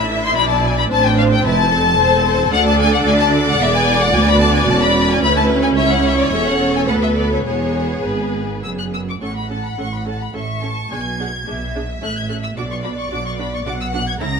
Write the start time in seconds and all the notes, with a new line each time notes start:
Already playing: A1 A2 D4 E4 E5
0.23 C6
0.36 B1 B2 D5 B5
0.49 A5
0.64 G#5
0.78 B5
0.90 A1 A2 C4 D4 C5 A5
1.05 G5
1.18 F5
1.32 G5
1.44 F1 F2 C4 E4 B4 A5
1.71 A4
1.98 E1 E2 C4 C5
2.24 C5
2.51 D2 D4 D5 F#5
2.66 A5
2.80 G#5
2.93 F#5
3.06 D2 D3 G#5
3.20 A5
3.48 F#5
3.60 E1 E2 B3 G#4 E5
3.74 G#5
4.00 F#5
4.13 D2 B3 F#4 G#5
4.27 B5
4.40 A5
4.55 G#5
4.68 E1 E2 C#4 A5
4.81 B5
5.09 G#5
5.22 D2 E4 B4 B5
5.37 A5
5.63 G#5
5.77 C#2 E4 C#5 E5
5.91 F#5
6.05 E5
6.18 D5
6.32 E1 E2 A4 E5
6.46 F#5
6.75 G#5
6.88 D2 B3 B4 F#5
7.02 E5
7.16 D5
7.32 C#5
7.45 E1 E2 B3 G#4 C#5
8.04 G#1 G#2 B4
8.64 F#1 F#2 E6
8.79 F#6
8.94 E6
9.09 D6
9.22 A1 A2 C#4 A4 F#5 C#6
9.37 B5
9.50 C#4 A4 A5
9.66 B5
9.78 A1 A2 C#4 A4 C#6
9.94 B5
10.05 C#4 A4 A5
10.21 B5
10.33 A1 A2 C#4 A4 E5 C#6
10.62 C#4 A4 A5
10.91 B1 B2 D4 G#4 G#5 G#6
11.20 D4 G#4 F#5
11.47 B1 B2 D4 G#4 E5
11.75 D4 G#4
12.02 A1 A2 C#4 A4 F#6
12.17 G#6
12.29 C#4 A4 F#6
12.44 E6
12.57 B1 B2 D4 F#4 D5 D6
12.72 C#6
12.84 D4 F#4 B5
12.98 C#6
13.11 B1 B2 D4 F#4 D6
13.26 C#6
13.39 D4 F#4 B5
13.54 C#6
13.66 B1 B2 D4 F#4 F#5 D6
13.81 E6
13.93 D4 F#4 F#6
14.08 G#6
14.20 C#2 C#3 C#4 E4 A#5 A#6